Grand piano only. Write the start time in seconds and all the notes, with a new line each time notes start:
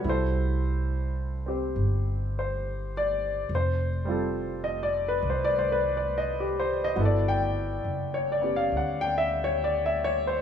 Already playing: F#4
0.01 G3
0.05 E4 A4
0.09 C5
1.46 C4 G4 C5
2.39 C5
2.97 D5
3.55 C5
4.05 G3 C4 F4
4.10 A4
4.64 D#5
4.83 D5
5.08 B4
5.30 C5
5.44 D5
5.59 C5
5.72 B4
5.97 D5
6.18 D#5
6.40 G4
6.60 C5
6.84 D#5
6.96 B3 E4 F#4
7.01 A4
7.05 D5
7.28 G5
8.14 C#5
8.32 D5
8.41 B3 C#4 G4
8.56 F5
8.77 F#5
9.01 G5
9.18 E5
9.44 C#5
9.64 D5
9.86 E5
10.04 C#5
10.27 C5